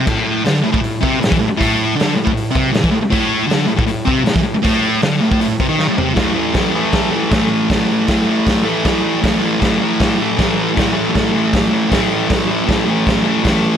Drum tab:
CC |x---------------|----------------|----------------|----------------|
HH |----o---o---o---|o---o---o---o---|o---o---o---o---|o---o---o-------|
SD |----o-------o---|----o-------o---|----o-------o---|----o-------o---|
FT |----------------|----------------|----------------|--------------o-|
BD |o------o--o--o--|o------o--o--o--|o------o--o--o--|o------o--o-----|

CC |----------------|----------------|----------------|----------------|
HH |o---o---o---o---|o---o---o---o---|o---o---o---o---|o---o---o---o---|
SD |o---o---o---o---|o---o---o---o---|o---o---o---o---|o---o---o---o---|
FT |----------------|----------------|----------------|----------------|
BD |o---o---o---o---|o---o---o---o---|o---o---o---o---|o---o---o---o---|

CC |----------------|
HH |o---o---o---o---|
SD |o---o---o---o---|
FT |----------------|
BD |o---o---o---o---|